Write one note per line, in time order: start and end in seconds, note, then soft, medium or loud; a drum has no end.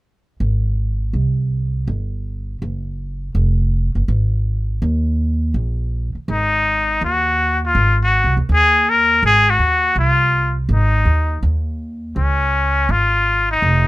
0.40 1.10 G#1 medium
1.13 1.84 C2 medium
1.87 2.58 G1 medium
2.62 3.31 F#1 medium
3.35 3.91 F1 medium
3.95 4.07 F#1 medium
4.08 4.78 G#1 medium
4.82 5.52 D#2 medium
5.54 6.11 A#1 medium
6.15 muted upright bass stroke soft
6.28 6.98 G#1 medium
6.28 7.00 D#4 medium
7.01 7.72 D#2 medium
7.01 7.60 F#4 medium
7.65 7.99 F4 medium
7.75 8.21 G#1 medium
8.03 8.36 F#4 medium
8.24 8.36 C2 medium
8.37 8.48 D#2 medium
8.49 9.19 D#2 medium
8.54 8.91 G#4 medium
8.89 9.25 A#4 medium
9.23 9.57 G#1 medium
9.23 9.51 G#4 medium
9.50 9.98 F#4 medium
9.59 9.93 D#2 medium
9.95 10.66 C2 medium
9.95 10.54 F4 medium
10.69 11.03 G#1 medium
10.73 11.41 D#4 medium
11.05 11.40 D#2 medium
11.43 12.13 D#2 medium
12.16 12.86 C#2 medium
12.16 12.92 C#4 medium
12.89 13.59 G#1 medium
12.89 13.50 F4 medium
13.51 13.88 D#4 medium
13.62 13.88 F1 medium